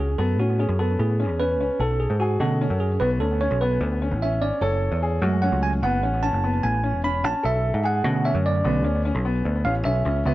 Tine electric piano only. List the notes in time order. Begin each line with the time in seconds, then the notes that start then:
0.00 G#4
0.18 A4
0.40 F#4
0.60 G#4
0.79 A4
1.00 G#4
1.39 B4
1.80 A4
2.00 G#4
2.20 F#4
2.40 D3 A3 C#4 A4
2.80 G#4
3.00 B4
3.21 A4
3.41 C#5
3.61 B4
4.22 E5
4.42 D5
4.62 C#5
5.22 F#3 G#3 A3
5.42 F#5
5.63 G#5
5.83 F#5
6.23 A5
6.63 G#5
7.04 B5
7.25 A5
7.45 E5
7.85 F#5
8.04 D3 A3 C#4
8.25 E5
8.46 D5
8.65 D3 A3 C#4
9.65 F5
9.85 E5
10.26 C#3 B3 E5